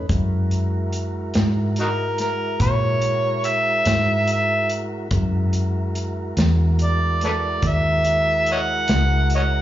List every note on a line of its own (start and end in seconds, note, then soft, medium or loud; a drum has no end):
0.09 1.31 F#2 medium
0.09 5.08 G#3 medium
0.09 5.09 E4 medium
0.09 5.08 F#4 medium
0.09 5.08 A#4 medium
0.09 kick loud
0.09 closed hi-hat medium
0.51 closed hi-hat soft
0.93 closed hi-hat medium
1.34 2.57 G#2 medium
1.34 snare loud
1.34 closed hi-hat medium
1.76 1.87 D#4 medium
1.76 1.88 F#4 medium
1.76 2.17 A#4 medium
1.76 closed hi-hat medium
2.18 2.58 A#4 medium
2.18 snare soft
2.18 closed hi-hat medium
2.60 3.82 A#2 medium
2.60 3.48 C#5 medium
2.60 kick medium
2.60 closed hi-hat medium
3.02 closed hi-hat medium
3.44 4.29 E5 medium
3.44 closed hi-hat medium
3.85 5.08 G#2 medium
3.85 snare medium
3.85 closed hi-hat medium
4.27 closed hi-hat medium
4.32 4.69 E5 medium
4.69 closed hi-hat medium
5.11 6.33 F#2 medium
5.11 9.62 G#3 medium
5.11 9.62 E4 medium
5.11 9.62 F#4 medium
5.11 9.62 A#4 medium
5.11 kick medium
5.11 closed hi-hat medium
5.53 closed hi-hat medium
5.95 closed hi-hat medium
6.37 7.59 E2 medium
6.37 snare loud
6.37 closed hi-hat medium
6.79 closed hi-hat medium
6.83 7.21 D5 medium
7.21 7.32 A4 medium
7.21 7.31 B4 medium
7.21 7.69 D5 medium
7.21 snare soft
7.21 closed hi-hat medium
7.62 8.85 D#2 medium
7.62 kick medium
7.62 closed hi-hat medium
7.68 8.49 E5 medium
8.04 closed hi-hat medium
8.46 closed hi-hat soft
8.52 8.59 C#5 medium
8.52 8.60 D#5 medium
8.52 9.29 F#5 medium
8.88 9.62 C#2 medium
8.88 snare loud
8.88 closed hi-hat medium
9.30 closed hi-hat medium
9.35 9.42 C#5 medium
9.35 9.42 D#5 medium
9.35 9.62 F#5 medium